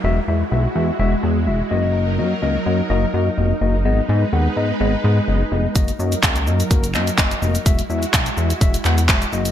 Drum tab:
HH |----------------|----------------|----------------|xx-xxx-xxx-xxx-x|
SH |----------------|----------------|----------------|xxxxxxxxxxxxxxxx|
CP |----------------|----------------|----------------|----x-----x-x---|
BD |----------------|----------------|----------------|o---o---o---o---|

HH |xx-xxx-xxx-xxx-x|
SH |xxxxxxxxxxxxxxxx|
CP |----x-----x-x---|
BD |o---o---o---o---|